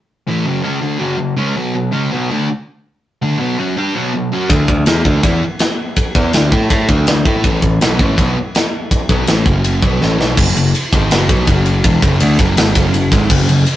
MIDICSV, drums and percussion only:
0, 0, Header, 1, 2, 480
1, 0, Start_track
1, 0, Key_signature, 3, "minor"
1, 0, Tempo, 366524
1, 131, Time_signature, 4, 2, 24, 8
1, 18025, End_track
2, 0, Start_track
2, 0, Title_t, "Drums"
2, 5889, Note_on_c, 9, 53, 68
2, 5893, Note_on_c, 9, 36, 110
2, 6020, Note_off_c, 9, 53, 0
2, 6024, Note_off_c, 9, 36, 0
2, 6133, Note_on_c, 9, 36, 88
2, 6264, Note_off_c, 9, 36, 0
2, 6365, Note_on_c, 9, 53, 65
2, 6379, Note_on_c, 9, 38, 119
2, 6496, Note_off_c, 9, 53, 0
2, 6510, Note_off_c, 9, 38, 0
2, 6615, Note_on_c, 9, 36, 95
2, 6746, Note_off_c, 9, 36, 0
2, 6854, Note_on_c, 9, 36, 106
2, 6855, Note_on_c, 9, 53, 75
2, 6985, Note_off_c, 9, 36, 0
2, 6986, Note_off_c, 9, 53, 0
2, 7325, Note_on_c, 9, 53, 70
2, 7339, Note_on_c, 9, 38, 102
2, 7456, Note_off_c, 9, 53, 0
2, 7470, Note_off_c, 9, 38, 0
2, 7810, Note_on_c, 9, 53, 77
2, 7815, Note_on_c, 9, 36, 105
2, 7941, Note_off_c, 9, 53, 0
2, 7946, Note_off_c, 9, 36, 0
2, 8054, Note_on_c, 9, 36, 111
2, 8185, Note_off_c, 9, 36, 0
2, 8293, Note_on_c, 9, 53, 80
2, 8307, Note_on_c, 9, 38, 114
2, 8424, Note_off_c, 9, 53, 0
2, 8438, Note_off_c, 9, 38, 0
2, 8539, Note_on_c, 9, 36, 98
2, 8670, Note_off_c, 9, 36, 0
2, 8779, Note_on_c, 9, 36, 109
2, 8784, Note_on_c, 9, 53, 74
2, 8910, Note_off_c, 9, 36, 0
2, 8915, Note_off_c, 9, 53, 0
2, 9019, Note_on_c, 9, 36, 107
2, 9150, Note_off_c, 9, 36, 0
2, 9257, Note_on_c, 9, 53, 60
2, 9271, Note_on_c, 9, 38, 108
2, 9387, Note_off_c, 9, 53, 0
2, 9402, Note_off_c, 9, 38, 0
2, 9501, Note_on_c, 9, 36, 103
2, 9632, Note_off_c, 9, 36, 0
2, 9741, Note_on_c, 9, 53, 69
2, 9743, Note_on_c, 9, 36, 105
2, 9872, Note_off_c, 9, 53, 0
2, 9874, Note_off_c, 9, 36, 0
2, 9984, Note_on_c, 9, 36, 93
2, 10115, Note_off_c, 9, 36, 0
2, 10231, Note_on_c, 9, 53, 68
2, 10245, Note_on_c, 9, 38, 115
2, 10362, Note_off_c, 9, 53, 0
2, 10376, Note_off_c, 9, 38, 0
2, 10468, Note_on_c, 9, 36, 90
2, 10599, Note_off_c, 9, 36, 0
2, 10711, Note_on_c, 9, 36, 113
2, 10719, Note_on_c, 9, 53, 68
2, 10842, Note_off_c, 9, 36, 0
2, 10850, Note_off_c, 9, 53, 0
2, 11195, Note_on_c, 9, 53, 59
2, 11209, Note_on_c, 9, 38, 103
2, 11326, Note_off_c, 9, 53, 0
2, 11340, Note_off_c, 9, 38, 0
2, 11670, Note_on_c, 9, 36, 106
2, 11674, Note_on_c, 9, 53, 72
2, 11801, Note_off_c, 9, 36, 0
2, 11805, Note_off_c, 9, 53, 0
2, 11908, Note_on_c, 9, 36, 104
2, 12039, Note_off_c, 9, 36, 0
2, 12144, Note_on_c, 9, 53, 70
2, 12158, Note_on_c, 9, 38, 111
2, 12275, Note_off_c, 9, 53, 0
2, 12289, Note_off_c, 9, 38, 0
2, 12386, Note_on_c, 9, 36, 101
2, 12517, Note_off_c, 9, 36, 0
2, 12630, Note_on_c, 9, 53, 81
2, 12761, Note_off_c, 9, 53, 0
2, 12867, Note_on_c, 9, 36, 108
2, 12998, Note_off_c, 9, 36, 0
2, 13125, Note_on_c, 9, 38, 59
2, 13256, Note_off_c, 9, 38, 0
2, 13368, Note_on_c, 9, 38, 91
2, 13499, Note_off_c, 9, 38, 0
2, 13586, Note_on_c, 9, 36, 118
2, 13591, Note_on_c, 9, 49, 127
2, 13717, Note_off_c, 9, 36, 0
2, 13722, Note_off_c, 9, 49, 0
2, 13838, Note_on_c, 9, 51, 83
2, 13969, Note_off_c, 9, 51, 0
2, 14075, Note_on_c, 9, 51, 104
2, 14206, Note_off_c, 9, 51, 0
2, 14309, Note_on_c, 9, 36, 98
2, 14315, Note_on_c, 9, 51, 76
2, 14440, Note_off_c, 9, 36, 0
2, 14446, Note_off_c, 9, 51, 0
2, 14549, Note_on_c, 9, 51, 114
2, 14563, Note_on_c, 9, 38, 115
2, 14680, Note_off_c, 9, 51, 0
2, 14694, Note_off_c, 9, 38, 0
2, 14789, Note_on_c, 9, 36, 109
2, 14789, Note_on_c, 9, 51, 80
2, 14920, Note_off_c, 9, 36, 0
2, 14920, Note_off_c, 9, 51, 0
2, 15023, Note_on_c, 9, 51, 98
2, 15028, Note_on_c, 9, 36, 100
2, 15154, Note_off_c, 9, 51, 0
2, 15159, Note_off_c, 9, 36, 0
2, 15265, Note_on_c, 9, 51, 81
2, 15396, Note_off_c, 9, 51, 0
2, 15508, Note_on_c, 9, 36, 115
2, 15508, Note_on_c, 9, 51, 109
2, 15639, Note_off_c, 9, 36, 0
2, 15639, Note_off_c, 9, 51, 0
2, 15747, Note_on_c, 9, 36, 101
2, 15751, Note_on_c, 9, 51, 84
2, 15878, Note_off_c, 9, 36, 0
2, 15882, Note_off_c, 9, 51, 0
2, 15981, Note_on_c, 9, 51, 120
2, 16112, Note_off_c, 9, 51, 0
2, 16225, Note_on_c, 9, 36, 100
2, 16229, Note_on_c, 9, 51, 74
2, 16356, Note_off_c, 9, 36, 0
2, 16360, Note_off_c, 9, 51, 0
2, 16464, Note_on_c, 9, 51, 122
2, 16478, Note_on_c, 9, 38, 121
2, 16595, Note_off_c, 9, 51, 0
2, 16609, Note_off_c, 9, 38, 0
2, 16703, Note_on_c, 9, 36, 108
2, 16708, Note_on_c, 9, 51, 83
2, 16834, Note_off_c, 9, 36, 0
2, 16839, Note_off_c, 9, 51, 0
2, 16944, Note_on_c, 9, 51, 104
2, 17075, Note_off_c, 9, 51, 0
2, 17179, Note_on_c, 9, 36, 105
2, 17186, Note_on_c, 9, 51, 82
2, 17310, Note_off_c, 9, 36, 0
2, 17317, Note_off_c, 9, 51, 0
2, 17417, Note_on_c, 9, 36, 115
2, 17418, Note_on_c, 9, 57, 109
2, 17548, Note_off_c, 9, 36, 0
2, 17549, Note_off_c, 9, 57, 0
2, 17665, Note_on_c, 9, 51, 75
2, 17796, Note_off_c, 9, 51, 0
2, 17896, Note_on_c, 9, 51, 106
2, 18025, Note_off_c, 9, 51, 0
2, 18025, End_track
0, 0, End_of_file